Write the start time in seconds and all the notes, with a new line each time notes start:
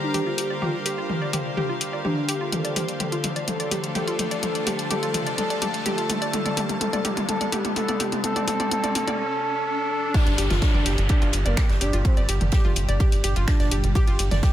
Already playing: D3 G3 A#3 G4 A#4 C5 F5 A#5, riser
0.03 D4
0.14 G4, open hi-hat, mid tom
0.27 F4
0.38 G4, open hi-hat
0.50 D5
0.62 F4 G4, mid tom
0.86 G4, open hi-hat
0.98 F4
1.10 mid tom
1.22 D5
1.33 G4, open hi-hat, mid tom
1.57 G4, mid tom
1.69 F4
1.81 open hi-hat
1.93 D5
2.05 D4 G4, mid tom
2.29 G4, open hi-hat
2.41 F4
2.52 F3 A3 D4 F4 A4, closed hi-hat, mid tom
2.65 D5, closed hi-hat
2.76 G4, open hi-hat, mid tom
2.88 closed hi-hat
3.00 G4 A4, closed hi-hat, mid tom
3.12 F4, closed hi-hat
3.24 open hi-hat, mid tom
3.36 D5, closed hi-hat
3.48 A4, closed hi-hat, mid tom
3.60 D5, closed hi-hat
3.71 G4, open hi-hat, mid tom
3.84 closed hi-hat
3.95 G4 A4, open hi-hat, mid tom
4.08 F4, closed hi-hat
4.19 open hi-hat, mid tom
4.24 A5
4.31 D5, closed hi-hat
4.43 A4, closed hi-hat, mid tom
4.55 D5, closed hi-hat
4.67 G4, open hi-hat, mid tom
4.79 closed hi-hat
4.90 G4 A4, closed hi-hat, mid tom
5.03 F4, closed hi-hat
5.14 open hi-hat, mid tom
5.27 D5, closed hi-hat
5.38 A4, closed hi-hat, mid tom
5.50 D5, closed hi-hat
5.62 G4, open hi-hat, mid tom
5.74 closed hi-hat
5.86 G4 A4, closed hi-hat, mid tom
5.98 F4, closed hi-hat
6.10 open hi-hat, mid tom
6.22 D5, closed hi-hat
6.33 C3 A4, closed hi-hat, mid tom
6.46 D5, closed hi-hat, mid tom
6.57 G4, open hi-hat, mid tom
6.69 closed hi-hat, mid tom
6.81 A4, closed hi-hat, mid tom
6.93 D5, closed hi-hat, mid tom
7.05 G4, open hi-hat, mid tom
7.17 closed hi-hat, mid tom
7.29 A4, closed hi-hat, mid tom
7.41 D5, closed hi-hat, mid tom
7.52 G4, open hi-hat, mid tom
7.65 closed hi-hat, mid tom
7.76 A4, open hi-hat, mid tom
7.88 D5, closed hi-hat, mid tom
8.00 G4, open hi-hat, mid tom
8.12 closed hi-hat, mid tom
8.24 A4, closed hi-hat, mid tom
8.36 D5, closed hi-hat, mid tom
8.48 A4, open hi-hat, mid tom
8.60 D5, closed hi-hat, mid tom
8.71 A4, closed hi-hat, mid tom
8.84 D5, closed hi-hat, mid tom
8.95 A4, open hi-hat, mid tom
9.07 D5, closed hi-hat, mid tom
9.19 A4
9.43 A4
9.67 A4
9.91 A4
10.14 A#2 D3 G3 D4 G4, kick, closed hi-hat, ride, downlifter
10.27 G1, closed hi-hat, ride
10.38 G1 G4, open hi-hat, ride
10.50 G1 F4, snare, closed hi-hat, mid tom
10.62 D4, kick, snare, closed hi-hat, ride
10.74 G1 D5, mid tom
10.86 G1 G4, snare, open hi-hat, ride
10.98 G1, closed hi-hat, ride
11.09 D4 G4, kick, closed hi-hat, ride
11.22 G1 F4, closed hi-hat, ride
11.33 G1, open hi-hat, ride
11.46 G1 A#3 D5, closed hi-hat
11.57 G4, finger snap, kick, snare, open hi-hat, ride
11.69 G1, snare, closed hi-hat
11.81 G1 D4 G4, open hi-hat, ride
11.93 G1 F4, closed hi-hat
12.05 C4, kick, closed hi-hat, ride
12.17 G1 D5, closed hi-hat
12.29 G1 G4, open hi-hat, ride
12.41 G1, closed hi-hat, mid tom
12.52 G4, kick, snare, closed hi-hat, ride
12.65 G1 F4, mid tom
12.76 G1, open hi-hat, ride
12.88 G1 D5, closed hi-hat
13.00 G4, kick, closed hi-hat, ride
13.12 G1, open hi-hat
13.24 G1 G4, open hi-hat, ride
13.36 G1 F4, closed hi-hat, ride
13.47 D4, finger snap, kick, snare, closed hi-hat, ride
13.60 G1 D5, snare, closed hi-hat
13.71 G1 G4, open hi-hat, ride
13.84 G1, closed hi-hat
13.95 F4 G4, kick, closed hi-hat, ride
14.07 G1 F4, closed hi-hat, ride
14.19 G1, open hi-hat, ride
14.31 G1 D5, snare, closed hi-hat, mid tom
14.43 G4, kick, snare, closed hi-hat, ride